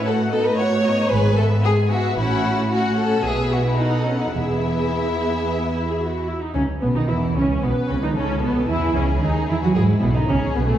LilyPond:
<<
  \new Staff \with { instrumentName = "Violin section" } { \time 4/4 \key e \major \tempo 4 = 112 fis''8 dis''8 fis''8 dis''8 gis''8 e''8 gis''8 e''8 | fis''4 fis''4 e''4 fis''4 | e''2.~ e''8 r8 | r2 b'4 a'4 |
gis'2 e'4 gis'4 | }
  \new Staff \with { instrumentName = "Violin section" } { \time 4/4 \key e \major a'8 a'16 b'16 cis''4 b'8 a'8 gis'8 fis'8 | e'4 fis'8 a'8 gis'8 fis'16 e'16 dis'8 cis'16 dis'16 | e'2.~ e'8 r8 | cis'8 b16 dis'16 e'8 cis'8 b8 cis'16 dis'16 cis'8 b8 |
e'8 cis'8 dis'8 e'16 fis'16 gis'8 b16 dis'16 cis'8 b16 a16 | }
  \new Staff \with { instrumentName = "Viola section" } { \time 4/4 \key e \major <a fis'>8 <b dis'>8 <a fis'>8 <b dis'>8 <gis gis'>8 <b b'>8 <gis gis'>8 <b b'>8 | <cis' fis'>4 <cis' fis'>4 <b gis'>4 <b a'>4 | <b gis'>2~ <b gis'>8 e'16 gis'16 fis'8 e'16 dis'16 | cis'8 b16 dis'16 e'8 cis'8 b8 cis'16 dis'16 cis'8 b8 |
e'8 cis'8 dis'8 e'16 fis'16 gis'8 b16 dis'16 cis'8 b16 a16 | }
  \new Staff \with { instrumentName = "Cello section" } { \clef bass \time 4/4 \key e \major a,2 gis,2 | a,2 b,2 | e,2.~ e,8 r8 | cis8 b,16 dis16 e8 cis8 b,8 cis16 dis16 cis8 b,8 |
e8 cis8 dis8 e16 fis16 gis8 b,16 dis16 cis8 b,16 a,16 | }
  \new Staff \with { instrumentName = "Double bass section" } { \clef bass \time 4/4 \key e \major r2 gis,,4 r4 | a,,4 r4 b,,4 r4 | e,,4 r2. | cis,8 b,,16 r16 e,8 cis,8 b,,8 cis,16 r16 cis,8 b,,8 |
e,8 cis,8 dis,8 e,16 r16 gis,8 b,,16 r16 cis,8 b,,16 r16 | }
>>